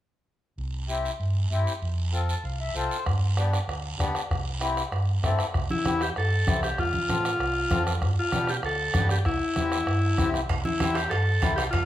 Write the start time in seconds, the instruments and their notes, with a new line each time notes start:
0.58 fingered electric bass C2, long guiro
0.88 accordion C4 E4 G4, short guiro
1.05 short guiro
1.20 fingered electric bass G2, long guiro
1.51 fingered electric bass G2, accordion C4 E4 G4, short guiro
1.67 short guiro
1.82 fingered electric bass F2, long guiro
2.12 accordion C4 F4 A4, short guiro
2.29 accordion A5, short guiro
2.44 fingered electric bass C2, accordion F5, long guiro
2.60 accordion E5
2.75 fingered electric bass C2, accordion C4 F4 A4 C5, short guiro
2.91 short guiro
3.06 fingered electric bass G2, bombo low, bombo rim, long guiro
3.37 accordion B3 D4 G4, bombo rim, short guiro
3.53 bombo rim, short guiro
3.68 fingered electric bass D2, bombo rim, long guiro
3.98 fingered electric bass D2, accordion B3 D4 G4, bombo low, bombo rim, short guiro
4.15 bombo rim, short guiro
4.30 fingered electric bass C2, bombo low, bombo rim, long guiro
4.61 accordion C4 E4 G4, bombo rim, short guiro
4.77 bombo rim, short guiro
4.92 fingered electric bass G2, bombo rim, long guiro
5.23 fingered electric bass G2, accordion C4 E4 A4, bombo low, bombo rim, short guiro
5.39 bombo rim, short guiro
5.54 fingered electric bass C2, bombo low, bombo rim, long guiro
5.70 transistor combo organ E4, high conga
5.84 fingered electric bass E2, accordion C4 E4 G4, bombo rim, high conga, short guiro
6.01 transistor combo organ G4, bombo rim, short guiro
6.16 fingered electric bass G2, transistor combo organ A4, bombo rim, long guiro
6.47 fingered electric bass C2, accordion C4 E4 G4, bombo low, bombo rim, high conga, short guiro
6.63 transistor combo organ G4, bombo rim, short guiro
6.78 fingered electric bass F2, transistor combo organ F4, bombo low, bombo rim, long guiro
6.94 high conga
7.08 fingered electric bass A2, accordion C4 F4 A4, bombo rim, high conga, short guiro
7.25 bombo rim, short guiro
7.39 fingered electric bass C2, bombo rim, long guiro
7.70 fingered electric bass F2, accordion C4 F4 A4, bombo low, bombo rim, high conga, short guiro
7.87 bombo rim, short guiro
8.01 fingered electric bass G2, bombo low, bombo rim, long guiro
8.19 transistor combo organ F4
8.32 fingered electric bass B2, accordion B3 D4 G4, bombo rim, high conga, short guiro
8.47 transistor combo organ G4, bombo rim, short guiro
8.63 fingered electric bass D2, transistor combo organ A4, bombo rim, long guiro
8.94 fingered electric bass G2, accordion B3 D4 G4, bombo low, bombo rim, high conga, short guiro
9.09 transistor combo organ G4, bombo rim, short guiro
9.25 fingered electric bass C2, transistor combo organ E4, bombo low, bombo rim, long guiro
9.56 fingered electric bass E2, accordion C4 E4 G4, bombo rim, high conga, short guiro
9.72 bombo rim, short guiro
9.86 fingered electric bass G2, bombo rim, long guiro
10.18 fingered electric bass C2, accordion C4 E4 G4, bombo low, bombo rim, high conga, short guiro
10.34 bombo rim, short guiro
10.49 fingered electric bass C2, bombo low, bombo rim, high timbale, long guiro
10.65 transistor combo organ E4, high conga
10.80 fingered electric bass E2, accordion C4 E4 G4, bombo rim, high conga, high timbale, short guiro
10.94 transistor combo organ G4, bombo rim, high timbale, short guiro
11.10 fingered electric bass G2, transistor combo organ A4, bombo rim, high timbale, long guiro
11.42 fingered electric bass C2, accordion C4 E4 G4, bombo low, bombo rim, high conga, high timbale, short guiro
11.56 transistor combo organ G4, bombo rim, high timbale, short guiro
11.71 fingered electric bass F2, transistor combo organ F4, bombo low, bombo rim, high timbale, long guiro